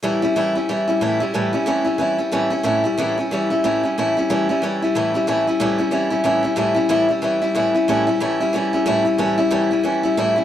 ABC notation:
X:1
M:4/4
L:1/8
Q:"Swing" 1/4=184
K:Amix
V:1 name="Steel-string acoustic guitar"
[A,,E,G,CE] [G,CE] [A,,E,G,CE] [G,CE] [E,G,CE] [G,CE] [A,,E,G,CE] [G,CE] | [A,,E,G,CE] [G,CE] [A,,E,G,CE] [G,CE] [E,G,CE] [G,CE] [A,,E,G,CE] [G,CE] | [A,,E,G,CE] [G,CE] [A,,E,G,CE] [G,CE] [E,G,CE] [G,CE] [A,,E,G,CE] [G,CE] | [A,,E,G,CE] [G,CE] [A,,E,G,CE] [G,CE] [E,G,CE] [G,CE] [A,,E,G,CE] [G,CE] |
[A,,E,G,CE] [G,CE] [A,,E,G,CE] [G,CE] [E,G,CE] [G,CE] [A,,E,G,CE] [G,CE] | [A,,E,G,CE] [G,CE] [A,,E,G,CE] [G,CE] [E,G,CE] [G,CE] [A,,E,G,CE] [G,CE] | [A,,E,G,CE] [G,CE] [A,,E,G,CE] [G,CE] [E,G,CE] [G,CE] [A,,E,G,CE] [G,CE] | [A,,E,G,CE] [G,CE] [A,,E,G,CE] [G,CE] [E,G,CE] [G,CE] [A,,E,G,CE] [G,CE] |]